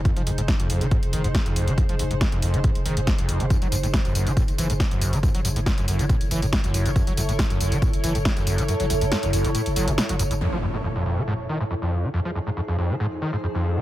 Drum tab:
HH |xxoxxxoxxxoxxxox|xxoxxxoxxxoxxxox|xxoxxxoxxxoxxxox|xxoxxxoxxxoxxxox|
TB |----------------|----------------|xxxxxxxxxxxxxxxx|xxxxxxxxxxxxxxxx|
SD |----o-------o---|----o-------o---|----o-------o---|----o-------o---|
BD |o---o---o---o---|o---o---o---o---|o---o---o---o---|o---o---o---o---|

HH |xxoxxxoxxxoxxxox|xxoxxxoxxxoxxxox|----------------|----------------|
TB |xxxxxxxxxxxxxxxx|xxxxxxxxxxxxxxxx|----------------|----------------|
SD |----o-------o---|----o-------o---|----------------|----------------|
BD |o---o---o---o---|----------------|----------------|----------------|